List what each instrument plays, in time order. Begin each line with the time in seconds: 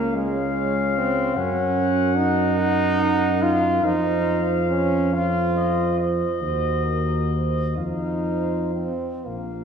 Already playing: tuba C#2, trombone A#3, flugelhorn F5
0.14 trombone G#3, trombone section G#4, french horn section C#5, flugelhorn F5
0.98 trombone C4
1.36 tuba F#2, trombone C#4, trombone section F#4, french horn section A#4, flugelhorn F#5
2.17 trombone D#4
2.58 trombone section D#4, flugelhorn F#5
3.01 flugelhorn F#5
3.42 trombone F4, flugelhorn F5
3.82 tuba F2, trombone D#4, trombone section F4, french horn section C5, flugelhorn F5
4.70 trombone C#4
5.14 trombone section F4, trombone F4, french horn section C5, flugelhorn F5
5.57 flugelhorn D#5
6.00 flugelhorn D#5
6.41 tuba D#2, trombone section F#4, french horn section C5
6.84 french horn section A#4
7.32 french horn section C5
7.77 tuba F2, trombone D#4, trombone section F4, french horn section C5, flugelhorn F5
8.75 trombone C4
9.27 tuba A#1, trombone A#3, trombone section F4, french horn section A#4, flugelhorn F5